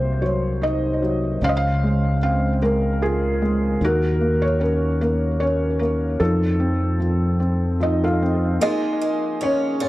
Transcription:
Already playing: C2 C3 F#3 A#3 C5
0.22 F#3 C#5
0.62 D#4 D#5
1.02 F#3
1.42 C#2 C#3 C5 F5
1.49 D#5
1.57 F5
1.83 G#3
2.23 C4 F5
2.62 G#3 A#4
3.02 F4 G#4
3.42 G#3
3.81 D#2 D#3 F#4 A#4
4.21 A#3
4.42 C#5
4.60 C#4 A#4
5.01 A#3 A#4
5.40 C#4 C#5
5.79 A#3 A#4
6.20 F2 F3 D#4 A4
6.60 C4
7.00 F3
7.40 C4
7.80 F3 D#4 D#5
8.04 F4 A4 F5
8.22 C4
8.61 G#3 A#3 D#4 F4 G#4 D#5
9.01 G#3
9.41 C#4 C#5
9.80 C#4 F4 C#5

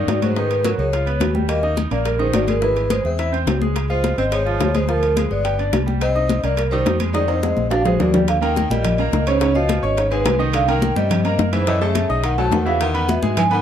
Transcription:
Already playing: D#3 A#3 D#4 D5
0.07 G#2, high bongo, low bongo, high conga, high timbale, low timbale
0.22 F#3 G#3 F#4 C5, high conga, high timbale
0.36 D#3 G#3 D#4 B4, high bongo, high conga
0.50 high bongo, high conga, high timbale
0.64 F#3 F#4 A#4, high bongo, high conga, high timbale, low timbale
0.78 C#2 G#3 C#5, high bongo, high conga
0.93 F4 F5, high bongo, high conga, high timbale
1.06 B3 B4, high conga, high timbale
1.20 D#2, high bongo, low bongo, high conga, high timbale, low timbale
1.34 G3 G4, high bongo, high conga
1.49 A#3 D#5, high bongo, high conga, high timbale
1.63 D#4 D#5, high bongo, high conga
1.77 high bongo, high conga, high timbale, low timbale
1.91 A#1 A#3 A#4 D5, high bongo, high conga, high timbale
2.05 G3 A#4, high bongo, high conga, high timbale
2.19 D#3 G#3 D#4 C5, high bongo, high conga
2.33 G#1 A#3 D5, high bongo, low bongo, high conga, high timbale, low timbale
2.47 G3 G#3 G#4 A#4, high conga, high timbale
2.61 E3 G#3 E4 B4, high bongo, high conga
2.76 high bongo, high conga, high timbale
2.90 G#3 G#4 C5, high bongo, high conga, high timbale, low timbale
3.04 E2 C4 E5, high bongo, high conga
3.19 E4 E5, high bongo, high conga, high timbale
3.32 C4 C5, high conga, high timbale
3.47 C#2, high bongo, low bongo, high conga, high timbale, low timbale
3.61 G#3 G#4, high bongo, high conga
3.76 high bongo, high conga, high timbale
3.90 G#3 F4 C5 F5, high bongo, high conga
4.04 high bongo, high conga, high timbale, low timbale
4.18 G#1 C4 C5 D#5, high bongo, high conga, high timbale
4.32 G#3 C#5, high bongo, high conga, high timbale
4.46 F3 F4, high bongo, high conga
4.60 D2, high bongo, low bongo, high conga, high timbale, low timbale
4.74 G#3 G#4 C5, high conga, high timbale
4.88 F3 F4 A#4, high bongo, high conga
5.03 high bongo, high conga, high timbale
5.17 F3 G#3 G#4, high bongo, high conga, high timbale, low timbale
5.31 G1 B3 D5, high bongo, high conga
5.44 G4 G5, high bongo, high conga, high timbale
5.58 D4 D5, high conga, high timbale
5.73 C2, high bongo, low bongo, high conga, high timbale, low timbale
5.86 G3 G4, high bongo, high conga
6.01 C4 D#5, high bongo, high conga, high timbale
6.15 D#4 D#5, high bongo, high conga
6.29 high bongo, high conga, high timbale, low timbale
6.44 C2 A#3 A#4 D5, high bongo, high conga, high timbale
6.57 G3 A#4, high bongo, high conga, high timbale
6.71 D#3 G3 D#4 C5, high bongo, high conga
6.86 F2, high bongo, low bongo, high conga, high timbale, low timbale
7.00 G#3 G#4, high conga, high timbale
7.13 D#3 G#3 D#4 D5, high bongo, high conga, high timbale
7.28 C4 D#5, high bongo, high conga, high timbale
7.43 G#3 G#4, high bongo, high conga, high timbale
7.57 A#1, high bongo, high conga
7.70 D4 D5 F5, high bongo, low timbale
7.84 G#3 G#4 C5, high bongo, low conga, low timbale
7.98 D#2 A#3 D5, low bongo, low conga, low timbale
8.14 G3 G4, low bongo, low conga, low timbale
8.28 D3 F5, high bongo, high conga, high timbale
8.41 D#3 A#3 A#4 G5 A#5, high conga, high timbale
8.56 high bongo, high conga
8.70 A#1 A#2 G3 G4 D#5 G5, high conga
8.85 high bongo, high conga, low conga, high timbale
8.98 A#3 A#4 A#5, high conga, high timbale
9.13 C#2, high bongo, low bongo, high conga
9.26 G#2 C#3 C#4 C5 C#5, high timbale
9.40 G#2 C#3 C#4 C#5, high bongo, high conga, high timbale
9.54 B2 F3 F4 D#5 F5, high bongo, high conga
9.69 high bongo, high conga, high timbale
9.82 G#1 C#4 C#5 C#6, high bongo, high conga
9.97 G#2 C#5, high bongo, high conga, high timbale
10.11 G#2 G#3 G#4 B4 G#5, high conga, high timbale
10.25 C2, high bongo, low bongo, high conga, high timbale, low timbale
10.39 D#3 D#4 D#5, high bongo
10.53 D3 F5, high bongo, high conga, high timbale
10.68 D#3 A#3 A#4 G5 A#5, high conga, high timbale
10.82 high bongo, high conga
10.96 G2 C3 G3 G4 D#5 G5, high conga
11.11 high bongo, high conga, low conga, high timbale
11.25 A#3 A#4 A#5, high conga, high timbale
11.39 F#2, high bongo, low bongo, high conga
11.53 G#2 E3 E4 C5 E5, high conga, high timbale
11.67 A2 E3 E4 D#5 E5, high bongo, high conga, high timbale
11.81 C#3 A3 A4 E5 A5, high bongo, high conga
11.95 high bongo, high conga, high timbale
12.09 B1 D#4 D#5 D#6, high bongo, high conga
12.24 D#3 F#5, high bongo, high conga, high timbale
12.38 F#3 A3 A4 A5, high conga, high timbale
12.52 E2 D#3 F#5, high bongo, low bongo, high conga, low timbale
12.65 C#3 E3 E4 E5 F5, high bongo, low timbale
12.80 D#3 F#5, high bongo, high conga, high timbale
12.94 B3 B4 B5, high conga, high timbale
13.09 B2 E5, high bongo, high conga
13.22 G#2 G#3 G#4 G#5, high conga
13.37 E3 G#5, high bongo, high conga, low conga, high timbale
13.50 D#3 B3 B4 F#5 B5, high conga, high timbale

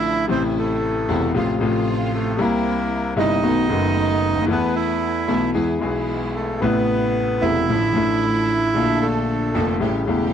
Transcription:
Already playing: A1 A2 D3 F3 A3 D4 E4
0.27 A1 A2 C3 E3 A3 C4 E4
0.58 A3
1.08 E1 E2 C3 E3 A3 C4 E4
1.34 A1 A2 C3 F3 A3 C4 F4
1.59 A1 A2 C3 F3 A3 C4 F4
2.14 A3
2.37 C2 C3 G3 A#3 C4 E4
2.41 E4
3.16 G1 G2 C3 G3 A#3 C4 D#4 E4
3.43 B1 B2 D#3 A3 B3 D#4 F#4
3.68 F#1 F#2 D#3 A3 B3 D#4
3.72 F#4
4.29 C#2
4.35 D2
4.41 D#2
4.46 E2 E3 A3 B3 E4
4.51 B3 A4
4.76 E4
5.27 B1 B2 E3 A3 B3 E4 A4
5.53 E2 E3 G#3 B3 E4 G#4
5.79 B1 B2 E3 G#3 B3 E4 G#4
6.36 A3
6.60 A1 A2 C3 A3 B3 E4
7.42 E1 E2 C3 A3 B3 C4 E4
7.69 A1 A2 D3 F3 A3 D4 E4
7.94 A1 A2 D3 F3 A3 D4 E4
8.74 A#1 A#2 D3 A3 D4 F4 A4
9.02 A3
9.54 F1 F2 D3 A3 A#3 D4 F4 A4
9.80 A1 A2 C#3 G3 A3 C#4 E4 G4
10.06 E1 E2 C#3 G3 A3 C#4 E4 G4

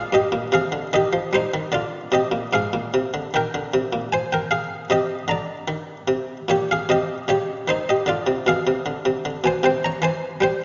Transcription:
Already playing: G#4 F5
0.12 G2 G4 D#5
0.32 A#2
0.52 C3 G#4 F5
0.72 D3
0.93 D#3 G4 D#5
1.13 F3
1.33 G3 D#4 C5
1.54 D#3
1.72 D3 F4 D5
2.12 C3 G4 D#5
2.31 A#2
2.53 G#2 G#4 F5
2.73 A#2
2.94 C3
3.14 D3
3.34 D#3 A#4 G5
3.54 D3
3.74 C3
3.93 A#2
4.13 C5 G#5
4.33 A#4 G5
4.51 G#4 F5
4.90 C3 G4 D#5
5.28 D3 D5 A#5
5.68 D#3
6.08 C3
6.48 A#2 G4 C#5
6.71 G#4 F5
6.89 C3 G4 D#5
7.28 C#3 G4 C#5
7.68 D#3 D#4 C5
7.89 G4 D#5
8.06 D3 F4 D5
8.27 C3
8.46 B2 G#4 F5
8.67 C3
8.86 D3
9.05 C3
9.25 D3
9.44 B2 C5 G#5
9.63 C3 C5 G5
9.84 C#5 A#5
10.02 E3 C5 G#5
10.41 G3 C5 G5

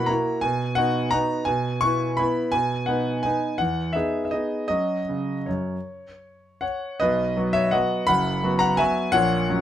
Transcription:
Already playing: B2 A#3 E4 F#4 F#5 B5
0.06 A#3 E4 F#4 A#5
0.41 B2 G#5
0.75 B3 D#4 F#4 F#5
1.11 B3 D#4 F#4 A#5
1.45 B2 G#5
1.81 B3 E4 B4 C#6
2.17 B3 E4 B4 B5
2.52 B2 G#5
2.86 B3 D#4 B4 F#5
3.23 B3 D#4 B4 G#5
3.58 E2 F#5
3.93 B3 D#4 G#4 E5
4.25 E5
4.31 B3 D#4 G#4 D#5
4.68 F#3 C#4 F#4 D#5
5.09 C#3
5.46 F#2 C#5
6.61 C#5 F#5
7.00 B1 B2 B4 D#5
7.37 F#3 B3 F#4
7.53 C#5 E5
7.71 F#3 B3 F#4 D#5 F#5
8.07 F#1 F#2 F#5 B5
8.43 F#3 B3 F#4
8.59 F#5 A#5
8.77 F#3 B3 F#4 E5 G#5
9.12 A#1 A#2 C#5 F#5
9.49 F#3 C#4 F#4

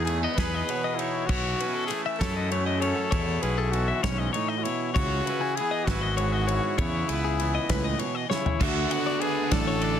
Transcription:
Already playing: E2 D#4 G#4
0.05 G#4, ride
0.09 E3 A3
0.23 B3 D#5
0.34 E2 B4, kick, ride
0.38 G#4 B4, snare
0.54 D#5
0.69 B2 B3 C#5, ride
0.84 D#5
0.95 E4 C#5, ride
1.00 D#4
1.26 B1 B2 E4 F#4 C#5, kick, crash
1.60 C#4 B4, ride
1.75 A4
1.87 E3 G#4, ride
1.91 A3
2.06 E5
2.18 F#2 E4 A4 C#5, kick, snare, ride
2.37 D#5
2.51 F#2 A3 C#5, ride
2.66 D#5
2.79 A4 C#5, ride
2.83 C#4
3.11 E2 B2 E4 C#5, kick, ride
3.41 B1 C#4 G#4 B4, ride
3.58 A4
3.72 E3 F#4, ride
3.88 E5
4.03 B1 G#2 C#4 C#5, kick, snare, ride
4.18 D#5
4.32 A2 D#4 C#5, ride
4.48 D#5
4.58 F#4
4.62 B2 E4 C#5, ride
4.93 C#2 F#4 C#5, kick, crash
4.97 C#3 E4
5.25 B4, ride
5.30 E4
5.41 G#4
5.55 G#4, ride
5.60 E3 B3
5.71 D#5
5.85 G#1 F#4 B4, kick, snare, ride
5.91 E4
6.01 D#5
6.17 G#2 B3 C#5, ride
6.32 D#5
6.47 C#5, ride
6.51 E4
6.78 E2 C#3 B3 E4 C#5, kick, ride
7.09 C#2 B3 B4, ride
7.24 G#4
7.40 E3 B3, ride
7.55 D#5
7.69 C#2 A2 B4, kick, snare, ride
7.84 D#5
7.99 B2 C#5, ride
8.15 D#5
8.30 C#3 E4 C#5, snare
8.46 floor tom
8.60 D2 D3 A3 D4 F#4 E5, kick, crash
8.91 B3 F#5, ride
9.07 D5
9.20 D4 G#4 B4, ride
9.51 A1 A2 A4 D5, kick, snare, ride
9.67 C#5
9.81 D4 D5, ride

